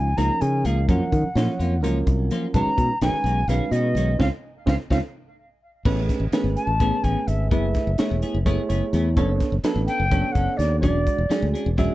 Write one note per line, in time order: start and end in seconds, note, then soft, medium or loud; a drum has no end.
0.00 0.16 C#2 medium
0.00 0.18 G#5 medium
0.17 0.29 C#2 medium
0.17 0.88 F3 medium
0.17 0.32 F3 medium
0.17 0.32 A#3 medium
0.17 0.88 C#4 medium
0.17 0.89 D#4 medium
0.17 0.32 D#4 medium
0.17 0.32 G#4 medium
0.17 0.88 A#4 medium
0.17 0.42 A#5 medium
0.17 closed hi-hat medium
0.41 0.64 C#3 medium
0.41 0.67 G#5 medium
0.41 closed hi-hat soft
0.65 0.87 C#2 medium
0.65 0.79 F3 medium
0.65 0.79 A#3 medium
0.65 0.80 D#4 medium
0.65 0.80 G#4 medium
0.65 0.88 F5 medium
0.65 closed hi-hat medium
0.89 1.00 F#2 medium
0.89 1.27 F3 medium
0.89 1.03 F3 medium
0.89 1.27 F#3 medium
0.89 1.03 A#3 medium
0.89 1.27 C#4 medium
0.89 1.03 C#4 medium
0.89 1.04 F4 medium
0.89 1.27 A#4 medium
0.89 1.79 F#5 medium
0.89 kick medium
0.89 closed hi-hat medium
1.12 1.23 D#3 medium
1.12 kick medium
1.12 closed hi-hat medium
1.23 muted fingered electric bass stroke soft
1.35 1.47 A#2 medium
1.35 1.74 F3 medium
1.35 1.50 F3 soft
1.35 1.74 F#3 medium
1.35 1.50 A#3 medium
1.35 1.74 C#4 soft
1.35 1.51 C#4 medium
1.35 1.51 F4 medium
1.35 1.74 C#5 medium
1.35 snare medium
1.35 closed hi-hat medium
1.59 1.83 F2 medium
1.59 1.74 A#3 soft
1.59 1.74 C#4 soft
1.59 1.74 F4 soft
1.59 closed hi-hat medium
1.83 2.05 C#2 medium
1.83 1.98 F3 medium
1.83 2.54 F#3 medium
1.83 1.98 A#3 medium
1.83 2.54 C#4 medium
1.83 1.98 C#4 medium
1.83 2.54 F4 medium
1.83 1.98 F4 medium
1.83 2.54 A#4 medium
1.83 closed hi-hat medium
2.07 2.29 C2 medium
2.07 kick medium
2.07 closed hi-hat medium
2.31 2.45 F3 medium
2.31 2.45 A#3 medium
2.31 2.45 C#4 medium
2.31 2.46 F4 medium
2.31 closed hi-hat medium
2.54 2.65 B1 medium
2.54 2.69 D#3 medium
2.54 2.93 G#3 medium
2.54 2.69 G#3 medium
2.54 2.93 C#4 medium
2.54 2.69 C#4 medium
2.54 2.93 D#4 medium
2.54 2.69 F#4 medium
2.54 2.93 B4 medium
2.54 2.98 A#5 loud
2.54 kick medium
2.54 closed hi-hat medium
2.67 muted fingered electric bass stroke soft
2.78 2.89 B2 medium
2.78 kick medium
2.78 closed hi-hat medium
3.01 3.12 B1 medium
3.01 3.16 D#3 medium
3.01 3.40 G#3 medium
3.01 3.16 G#3 medium
3.01 3.40 C#4 medium
3.01 3.16 C#4 medium
3.01 3.40 D#4 soft
3.01 3.16 F#4 medium
3.01 3.40 B4 medium
3.01 3.49 G#5 loud
3.01 snare loud
3.01 closed hi-hat medium
3.24 3.47 B1 medium
3.24 3.40 G#3 soft
3.24 3.40 C#4 soft
3.24 3.39 F#4 soft
3.24 closed hi-hat medium
3.48 3.59 B1 medium
3.48 3.63 D#3 medium
3.48 4.20 G#3 medium
3.48 3.64 G#3 medium
3.48 4.18 C#4 medium
3.48 3.64 C#4 medium
3.48 4.20 D#4 medium
3.48 3.64 F#4 medium
3.48 4.20 B4 medium
3.48 3.73 F5 medium
3.48 closed hi-hat medium
3.71 3.94 B2 medium
3.71 3.87 G#3 soft
3.71 3.87 C#4 soft
3.71 3.87 F#4 soft
3.71 4.19 D#5 medium
3.71 closed hi-hat medium
3.95 4.17 B1 medium
3.95 4.10 D#3 medium
3.95 4.11 G#3 medium
3.95 4.11 C#4 medium
3.95 4.11 F#4 medium
3.95 closed hi-hat soft
4.19 4.29 C#2 medium
4.19 4.27 C4 medium
4.19 4.28 C4 medium
4.19 4.27 C#4 medium
4.19 4.28 C#4 medium
4.19 4.27 F4 medium
4.19 4.28 F4 medium
4.19 4.28 F5 medium
4.19 kick medium
4.19 snare medium
4.66 4.76 C#2 medium
4.66 4.74 C4 medium
4.66 4.75 C4 medium
4.66 4.74 C#4 medium
4.66 4.75 C#4 medium
4.66 4.74 F4 medium
4.66 4.75 F4 medium
4.66 4.75 F5 medium
4.66 kick medium
4.66 snare medium
4.90 4.99 C#2 medium
4.90 4.98 C4 medium
4.90 4.98 C#4 medium
4.90 4.99 C#4 medium
4.90 4.98 F4 medium
4.90 4.98 F5 medium
4.90 kick medium
4.90 snare medium
5.85 6.07 A1 medium
5.85 6.00 E3 medium
5.85 6.24 A3 medium
5.85 6.00 B3 medium
5.85 6.00 C#4 medium
5.85 6.24 C#4 medium
5.85 6.00 G#4 medium
5.85 6.24 G#4 medium
5.85 6.24 B4 medium
5.85 kick loud
5.85 crash medium
6.09 kick medium
6.09 snare soft
6.09 closed hi-hat medium
6.20 6.31 A1 medium
6.32 6.47 E3 medium
6.32 6.71 A3 medium
6.32 6.48 B3 medium
6.32 6.71 C#4 medium
6.32 6.48 C#4 medium
6.32 6.71 G#4 medium
6.32 6.48 G#4 medium
6.32 6.71 B4 medium
6.32 muted fingered electric bass stroke soft
6.32 snare medium
6.32 closed hi-hat medium
6.44 6.55 G#1 medium
6.56 7.04 A5 medium
6.56 closed hi-hat medium
6.67 6.90 A1 medium
6.80 6.95 E3 medium
6.80 7.52 A3 medium
6.80 6.95 B3 medium
6.80 7.52 C#4 medium
6.80 6.95 C#4 medium
6.80 7.52 G#4 medium
6.80 6.95 G#4 medium
6.80 7.51 B4 medium
6.80 kick medium
6.80 closed hi-hat medium
7.03 7.15 A1 medium
7.03 7.19 B3 soft
7.03 7.19 C#4 soft
7.03 7.18 G#4 soft
7.03 7.29 G#5 medium
7.03 kick medium
7.03 closed hi-hat medium
7.27 7.51 G#1 medium
7.27 7.50 E5 medium
7.27 closed hi-hat medium
7.51 7.73 F#1 medium
7.51 7.65 A3 medium
7.51 7.90 A3 medium
7.51 7.66 B3 medium
7.51 7.66 E4 medium
7.51 7.90 E4 medium
7.51 7.66 G#4 medium
7.51 7.90 G#4 medium
7.51 7.90 B4 medium
7.51 8.18 E5 medium
7.51 kick medium
7.51 closed hi-hat medium
7.74 kick medium
7.74 snare soft
7.74 closed hi-hat medium
7.87 7.98 F#1 medium
7.98 8.37 A3 medium
7.98 8.13 A3 medium
7.98 8.13 B3 medium
7.98 8.37 E4 medium
7.98 8.13 E4 medium
7.98 8.37 G#4 medium
7.98 8.14 G#4 medium
7.98 8.37 C#5 medium
7.98 muted fingered electric bass stroke soft
7.98 snare loud
7.98 closed hi-hat medium
8.11 8.22 E1 medium
8.22 8.37 B3 soft
8.22 8.37 E4 soft
8.22 8.37 G#4 medium
8.22 closed hi-hat medium
8.34 8.56 F#1 medium
8.46 9.17 A3 medium
8.46 8.60 A3 medium
8.46 8.61 B3 medium
8.46 9.17 E4 medium
8.46 8.61 E4 medium
8.46 9.17 G#4 medium
8.46 8.61 G#4 medium
8.46 8.68 C#5 medium
8.46 kick medium
8.46 closed hi-hat medium
8.69 8.81 F#1 medium
8.69 8.84 B3 soft
8.69 8.84 E4 medium
8.69 8.84 G#4 medium
8.69 9.13 C#5 medium
8.69 closed hi-hat medium
8.93 9.18 E2 medium
8.93 9.08 A3 medium
8.93 9.08 B3 medium
8.93 9.08 E4 medium
8.93 9.09 G#4 medium
8.93 closed hi-hat medium
9.16 9.39 F#1 medium
9.16 9.31 F#3 medium
9.16 9.55 B3 medium
9.16 9.31 C#4 medium
9.16 9.55 D4 medium
9.16 9.32 D4 medium
9.16 9.55 A4 medium
9.16 9.32 A4 medium
9.16 9.55 C#5 medium
9.16 kick loud
9.16 closed hi-hat medium
9.40 kick medium
9.40 snare soft
9.40 closed hi-hat medium
9.52 9.63 F#1 medium
9.64 9.78 F#3 medium
9.64 10.03 B3 medium
9.64 9.78 C#4 medium
9.64 10.03 D4 medium
9.64 9.79 D4 medium
9.64 10.03 A4 medium
9.64 9.79 A4 medium
9.64 10.03 B4 medium
9.64 snare loud
9.64 closed hi-hat medium
9.76 9.87 A1 medium
9.87 10.03 C#4 soft
9.87 10.02 D4 soft
9.87 10.02 A4 soft
9.87 10.33 G5 loud
9.87 closed hi-hat medium
10.00 10.22 F#1 medium
10.11 10.26 F#3 medium
10.11 10.83 B3 medium
10.11 10.26 C#4 medium
10.11 10.82 D4 medium
10.11 10.26 D4 medium
10.11 10.83 A4 medium
10.11 10.26 A4 medium
10.11 10.83 C#5 medium
10.11 kick medium
10.11 closed hi-hat medium
10.32 10.46 F#1 medium
10.32 10.50 A4 medium
10.32 10.58 F#5 medium
10.32 kick medium
10.32 closed hi-hat medium
10.36 10.50 C#4 soft
10.36 10.50 D4 soft
10.57 10.85 D#2 medium
10.57 10.79 D5 medium
10.57 snare soft
10.57 closed hi-hat medium
10.80 11.05 E1 medium
10.80 10.97 F#3 medium
10.80 11.21 G#3 medium
10.80 10.97 C#4 medium
10.80 11.21 D4 medium
10.80 10.97 D4 medium
10.80 11.21 F#4 medium
10.80 10.97 G#4 medium
10.80 11.48 D5 medium
10.80 11.21 D5 medium
10.80 kick loud
10.80 closed hi-hat medium
11.07 kick medium
11.07 closed hi-hat medium
11.18 11.29 E1 medium
11.30 11.44 F#3 medium
11.30 11.69 G#3 medium
11.30 11.44 C#4 medium
11.30 11.45 D4 medium
11.30 11.69 D4 medium
11.30 11.69 F#4 soft
11.30 11.45 G#4 medium
11.30 11.69 G#4 medium
11.30 snare loud
11.30 closed hi-hat medium
11.42 11.53 D2 medium
11.54 11.69 C#4 soft
11.54 11.68 D4 soft
11.54 11.68 G#4 soft
11.54 closed hi-hat medium
11.66 11.88 E1 medium
11.78 11.92 F#3 medium
11.78 11.95 G#3 medium
11.78 11.92 C#4 medium
11.78 11.92 D4 medium
11.78 11.95 D4 medium
11.78 11.95 F#4 medium
11.78 11.92 G#4 medium
11.78 11.95 E5 medium
11.78 kick medium
11.78 snare soft
11.78 closed hi-hat medium